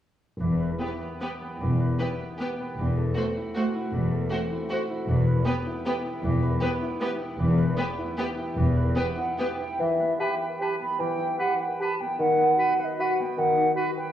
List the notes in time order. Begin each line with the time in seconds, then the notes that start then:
0.39 E1 E2 E3
0.60 B4
0.79 B3 E4 G4 B4
1.01 B3
1.21 B3 G4 B4
1.42 B3
1.60 E1 E2 E3
1.80 B4
1.99 B3 E4 G4 B4
2.20 B3
2.40 B3 G4 B4
2.60 B3
2.78 E1 E2 E3
2.97 A4
3.15 A3 C4 F#4 C5
3.37 E4
3.55 A3 F#4 C5
3.75 E4
3.93 E1 E2 E3
4.11 A4
4.30 A3 C4 F#4 C5
4.52 E4
4.71 A3 F#4 C5
4.90 E4
5.08 E1 E2 E3
5.27 B4
5.46 B3 G4 B4
5.66 E4
5.85 B3 G4 B4
6.05 E4
6.23 E1 E2 E3
6.42 B4
6.61 B3 G4 B4
6.82 E4
7.01 B3 G4 B4
7.20 E4
7.38 E1 E2 E3
7.58 B4
7.77 B3 G4 B4
7.99 E4
8.18 B3 G4 B4
8.38 E4
8.57 E1 E2 E3
8.76 B4
8.96 B3 G4 B4
9.17 E4 F#5
9.39 B3 G4 B4 G5
9.61 E4
9.80 E3 E5
10.00 B3
10.20 G4 B4 G5 A5
10.41 B4 G5
10.61 G4 B4 A5
10.81 B3 B5
10.99 E3 G5
11.19 E4
11.39 G4 B4 F#5
11.60 B4 G5
11.80 G4 B4 A5 B5
12.00 B3 G5
12.19 D#3 F#5
12.38 B3
12.58 F#4 B4
12.79 B4 F5
12.84 D#5
12.99 F#4 B4 F#5
13.20 B3 G5
13.38 D#3 F#5
13.57 D#4
13.76 F#4 B4
13.97 B4 G5